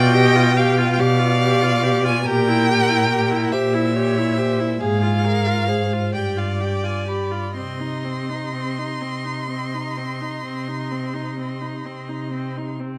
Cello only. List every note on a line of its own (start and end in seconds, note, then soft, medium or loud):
0.00 0.84 B2 loud
1.00 2.11 B2 medium
2.26 3.37 A#2 medium
3.53 4.64 A#2 medium
4.80 5.97 G#2 medium
6.14 7.39 G2 medium
7.57 8.85 C3 soft
9.02 10.27 C3 soft
10.44 11.68 C3 soft
11.84 12.98 C3 soft